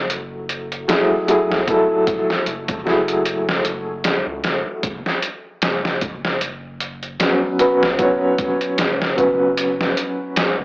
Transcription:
0.00 0.86 F#1 medium
0.00 0.84 F#3 medium
0.00 0.85 A3 medium
0.00 0.85 E4 medium
0.00 0.86 F#4 medium
0.10 closed hi-hat medium
0.49 closed hi-hat medium
0.72 closed hi-hat soft
0.88 1.24 F#3 medium
0.88 1.24 A3 medium
0.88 1.24 E4 medium
0.88 1.25 G#4 medium
0.88 snare loud
0.88 closed hi-hat medium
1.28 1.48 F#3 medium
1.28 1.49 A3 medium
1.28 1.49 E4 medium
1.28 1.49 G#4 loud
1.28 closed hi-hat medium
1.51 1.66 C#2 medium
1.51 snare medium
1.66 2.81 F#3 loud
1.66 2.82 A3 medium
1.66 2.83 E4 medium
1.66 2.83 A4 loud
1.66 kick loud
1.66 closed hi-hat medium
2.07 kick medium
2.07 closed hi-hat medium
2.30 snare soft
2.46 3.62 F#1 medium
2.46 closed hi-hat medium
2.68 kick medium
2.68 closed hi-hat medium
2.85 4.81 F#3 medium
2.85 4.81 A3 medium
2.85 4.82 E4 medium
2.85 4.83 G#4 medium
2.85 snare soft
3.08 closed hi-hat medium
3.25 closed hi-hat medium
3.49 snare medium
3.65 4.22 F#1 medium
3.65 closed hi-hat medium
4.04 snare loud
4.04 closed hi-hat medium
4.27 4.46 C#2 loud
4.44 4.64 F#1 loud
4.44 snare medium
4.44 closed hi-hat medium
4.83 5.03 F#1 loud
4.83 kick loud
4.83 closed hi-hat medium
5.06 snare soft
5.22 closed hi-hat medium
5.62 7.17 F#1 medium
5.62 snare loud
5.62 closed hi-hat medium
5.85 snare medium
6.01 kick medium
6.01 closed hi-hat medium
6.25 snare soft
6.41 closed hi-hat medium
6.80 closed hi-hat medium
7.03 closed hi-hat soft
7.20 7.55 F#3 medium
7.20 7.56 B3 medium
7.20 7.56 C#4 medium
7.20 7.56 B4 medium
7.20 snare loud
7.20 closed hi-hat medium
7.59 7.80 F#3 medium
7.59 7.80 B3 medium
7.59 7.81 C#4 medium
7.59 7.81 B4 loud
7.59 closed hi-hat medium
7.82 7.97 C#2 medium
7.82 snare medium
7.98 9.13 F#3 loud
7.98 9.13 B3 medium
7.98 9.14 C#4 medium
7.98 9.15 C#5 loud
7.98 kick loud
7.98 closed hi-hat medium
8.38 kick medium
8.38 closed hi-hat medium
8.61 closed hi-hat soft
8.78 9.94 F#1 medium
8.78 snare loud
8.78 closed hi-hat medium
9.02 snare soft
9.16 10.65 F#3 medium
9.16 10.65 B3 medium
9.16 10.65 C#4 medium
9.16 10.65 B4 medium
9.16 kick medium
9.16 closed hi-hat medium
9.57 closed hi-hat medium
9.81 snare medium
9.97 closed hi-hat medium
10.36 snare loud
10.36 closed hi-hat medium
10.59 10.65 F#1 medium

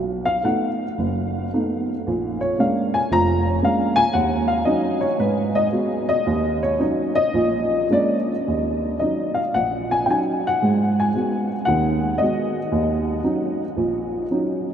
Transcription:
0.00 0.37 B1 medium
0.25 0.42 F5 medium
0.43 0.82 A3 medium
0.43 0.83 B3 soft
0.43 0.83 D#4 medium
0.43 0.66 F#5 medium
0.98 1.46 F#1 medium
1.53 1.91 A3 soft
1.53 1.91 B3 soft
1.53 1.91 D#4 medium
2.07 2.53 A#1 medium
2.41 2.58 C#5 medium
2.58 2.96 G#3 medium
2.58 2.97 A#3 soft
2.58 2.96 C#4 soft
2.58 2.97 D4 medium
2.58 2.94 F5 medium
2.94 3.11 G#5 medium
3.11 3.56 F1 medium
3.11 3.56 F2 medium
3.11 3.46 A#5 loud
3.47 3.63 C#5 medium
3.63 3.99 G#3 soft
3.63 3.99 A#3 soft
3.63 3.99 C#4 soft
3.63 3.99 D4 medium
3.63 3.97 F5 medium
3.96 4.13 G#5 loud
4.13 4.60 D#2 medium
4.13 4.48 F#5 medium
4.48 4.65 F5 medium
4.65 5.04 F#3 medium
4.65 5.04 C#4 medium
4.65 5.05 D#4 medium
4.65 5.01 D#5 medium
5.01 5.18 C#5 medium
5.19 5.66 G#2 medium
5.19 5.55 B4 medium
5.55 5.66 D#5 medium
5.72 6.11 G#3 medium
5.72 6.11 B3 soft
5.72 6.11 F#4 medium
6.09 6.59 D#5 loud
6.26 6.73 D#2 medium
6.63 6.79 C#5 medium
6.79 7.18 F#3 medium
6.79 7.18 C#4 medium
6.79 7.18 D#4 medium
6.79 7.16 C#5 medium
7.15 7.86 D#5 loud
7.34 7.83 A#1 medium
7.90 8.31 G#3 medium
7.90 8.31 A#3 soft
7.90 8.31 C#4 soft
7.90 8.31 D4 medium
7.90 8.15 D5 medium
8.48 8.95 D#2 medium
8.99 9.39 F#3 soft
8.99 9.40 C#4 soft
8.99 9.40 D#4 soft
8.99 9.38 D#5 medium
9.34 9.54 F5 medium
9.54 10.03 A#1 medium
9.54 10.02 A#2 medium
9.54 9.89 F#5 medium
9.91 10.04 G#5 medium
10.06 10.47 F#3 soft
10.06 10.48 D#4 medium
10.06 10.10 G5 medium
10.10 10.48 C#4 soft
10.10 10.18 G#5 medium
10.47 11.01 F#5 medium
10.62 11.09 G#2 medium
10.62 11.08 G#3 medium
11.00 11.48 G#5 medium
11.14 11.53 G#3 soft
11.14 11.53 B3 soft
11.14 11.54 F#4 medium
11.65 12.13 D#2 medium
11.65 12.13 D#3 medium
11.65 12.21 F#5 loud
12.18 12.57 G#3 soft
12.18 12.58 B3 soft
12.18 12.58 F#4 soft
12.18 14.25 D#5 medium
12.72 13.17 D#2 medium
13.23 13.61 F#3 medium
13.23 13.62 C#4 soft
13.23 13.62 D#4 medium
13.77 14.23 A#1 medium
14.30 14.69 F#3 soft
14.30 14.69 C#4 soft
14.30 14.69 D#4 medium

